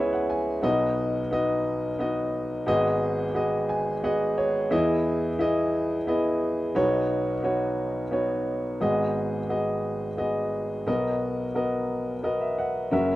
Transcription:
Already playing: C#2 C#3 B3 E4 G#4 C#5 D#5 E5 F#5
0.13 F#5
0.29 G#5
0.61 B1 B2 B3 D#4 F#4 D#5
1.31 B3 D#4 F#4 D#5
1.99 B3 D#4 F#4 D#5
2.66 G#1 G#2 B3 F#4 G#4 D#5
3.34 B3 F#4 G#4 D#5
3.69 G#5
4.03 B3 F#4 G#4 D#5 F#5
4.38 C#5
4.70 E2 E3 B3 E4 G#4 D#5
5.39 B3 E4 G#4 D#5
6.07 B3 E4 G#4 D#5
6.75 B1 B2 B3 D#4 F#4 C#5
7.43 B3 D#4 F#4 C#5
8.11 B3 D#4 F#4 C#5
8.80 G#1 G#2 B3 F#4 G#4 D#5
9.49 B3 F#4 G#4 D#5
10.17 B3 F#4 G#4 D#5
10.87 B1 B2 B3 F#4 A#4 D#5
11.55 B3 F#4 A#4 D#5
12.23 B3 F#4 A#4 D#5
12.41 E5
12.58 F#5
12.91 F#1 F#2 C#4 F#4 A#4 E5

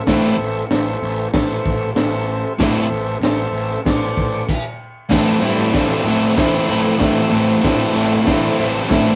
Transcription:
0.07 A1 A2 E3 A3 C4 E4 A4 C5 E5, kick, snare, crash
0.38 A1
0.71 A1 A4 C5 E5, snare, crash
1.02 A1
1.34 A1 A4 C5 E5, kick, snare, crash
1.66 A1, kick
1.95 A1 A4 C5 E5, snare, crash
2.59 A1 A2 E3 A3 C4 E4 A4 C5 E5, kick, snare, crash
2.91 A1
3.21 A1 C5, snare, crash
3.26 A4 E5
3.52 A1
3.85 A1 A4 C5 D5, kick, snare, crash
4.17 A1, kick
4.49 kick, crash
5.09 A1 A2 E3 A3 C4 E4 A4, kick, snare, crash
5.15 C5 E5
5.41 G2 A2 E3 A3 C4 E4
5.73 A1 A2 E3 A3 C4 E4 A4 C5 E5, kick, snare, open hi-hat
6.04 A1 A2 E3 A3 C4
6.09 E4
6.36 A1 A2 E3 A3 C4 E4 A4 C5, kick, snare, open hi-hat
6.41 E5
6.68 A1 A2 E3 A3 C4 E4
6.99 A1 A2 E3 A3 C4 E4 A4 C5 E5, kick, snare, open hi-hat
7.31 A1 A2 E3 A3 C4 E4
7.62 A1 A2 E3 A3 C4 E4 A4 C5 E5, kick, snare, open hi-hat
7.93 A1 A2 E3 A3 C4 E4
8.24 A1 A2 E3 A3 C4 E4 A4 C5 E5, kick, snare, open hi-hat
8.57 A1 A2 E3 A3 C4 E4
8.89 A1 A2 E3 A3 C4 E4 A4 C5 E5, kick, snare, open hi-hat

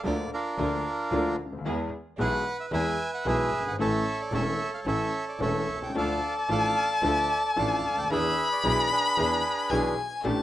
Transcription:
0.04 D2 D3 F3 A#3 D4 F4 A#4 D5
0.33 D4 F4 A#4
0.57 D2 D3 F3 A#3 D4 F4 A#4
1.11 D2 D3 F3 A#3 D4 F4 A#4
1.38 D2
1.46 C#2
1.52 D2
1.58 D#2
1.65 E2 E3 G#3 B3 E4 G#4
2.18 B1 B2 E3 G#3 B3 E4 G#4 B4 F#5
2.60 E5
2.72 E2 E3 G#3 B3 E4 G#4 B4 E5 G#5
3.14 F#5
3.25 B1 B2 E3 G#3 B3 E4 G#4 B4 E5
3.52 G1
3.60 F#1
3.67 G1 F#5
3.73 G#1
3.79 A1 A2 E3 A3 C#4 E4 A4 C#5 E5
4.21 D5
4.32 E1 E2 E3 A3 C#4 E4 A4 C#5 E5
4.74 F5
4.85 A1 A2 E3 A3 C#4 E4 A4 C#5 E5
5.29 D5
5.40 E1 E2 E3 A3 C#4 E4 A4 C#5 E5
5.68 C2
5.75 B1
5.82 C2 G5
5.89 C#2
5.95 D2 D3 F3 A3 D4 F4 A4 D5 F5 A5
6.38 D5
6.49 A1 A2 F3 A3 D4 F4 A4 D5 F5
6.92 F5
7.03 D2 D3 F3 A3 D4 F4 A4 E5
7.45 D5
7.56 A1 A2 F3 A3 D4 F4 A4 D5 F5
7.84 D2
7.91 C#2
7.97 D2 G5
8.04 D#2
8.10 E2 E3 B3 D4 E4 G#4 B4 E5 B5
8.53 D5
8.64 B1 B2 E3 B3 D4 E4 G#4 D5
8.91 D4 G#4 B4
9.17 E2 E3 B3 D4 E4 G#4
9.70 B1 B2 E3 B3 D4 E4 G#4 G#5
10.24 A1 A2 E3 A3 D4 G4 A4 A5

